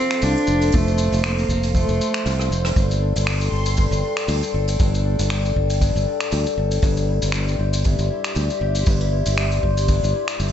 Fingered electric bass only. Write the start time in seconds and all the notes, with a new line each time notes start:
0.23 C2
0.48 F1
0.74 F1
1.12 F1
1.49 F1
1.89 F1
2.26 C2
2.51 F1
2.76 G1
3.16 G1
3.52 G1
3.91 G1
4.28 D2
4.54 G1
4.80 G1
5.19 G1
5.56 G1
5.96 G1
6.32 D2
6.58 G1
6.83 G1
7.23 G1
7.59 G1
7.99 G1
8.36 D2
8.61 G1
8.87 G1
9.26 G1
9.63 G1
10.03 G1
10.40 G1